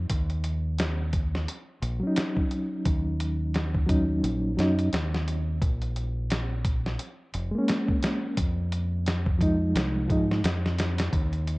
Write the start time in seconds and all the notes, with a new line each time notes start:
0.10 D#2, kick, closed hi-hat
0.30 closed hi-hat
0.44 closed hi-hat
0.78 snare, closed hi-hat
1.13 kick, closed hi-hat
1.35 snare
1.48 closed hi-hat
1.82 A#1, closed hi-hat
2.00 F#3 C#4
2.07 D#4
2.16 snare, closed hi-hat
2.37 kick
2.51 closed hi-hat
2.85 D#2, kick, closed hi-hat
3.20 closed hi-hat
3.54 snare, closed hi-hat
3.75 kick
3.87 F#3 C#4 D#4, kick, closed hi-hat
4.23 A#1, closed hi-hat
4.57 F#2 F#3 C#4 D#4, snare, closed hi-hat
4.79 closed hi-hat
4.93 D#2, snare, closed hi-hat
5.14 snare
5.28 closed hi-hat
5.62 A#1, kick, closed hi-hat
5.82 closed hi-hat
5.96 closed hi-hat
6.30 snare, closed hi-hat
6.65 kick, closed hi-hat
6.86 snare
6.99 closed hi-hat
7.34 F1, closed hi-hat
7.51 G#3 A#3
7.58 C#4
7.68 snare, closed hi-hat
7.88 kick
8.03 snare, closed hi-hat
8.37 F2, kick, closed hi-hat
8.72 closed hi-hat
9.06 snare, closed hi-hat
9.26 kick
9.39 F3 G#3 D#4, kick, closed hi-hat
9.75 C2, snare, closed hi-hat
10.08 G#2 F3 G#3 D#4, kick, closed hi-hat
10.31 snare
10.44 F2, snare, closed hi-hat
10.66 snare
10.79 snare, closed hi-hat
10.98 snare, closed hi-hat
11.13 D#2, kick, closed hi-hat
11.33 closed hi-hat
11.47 closed hi-hat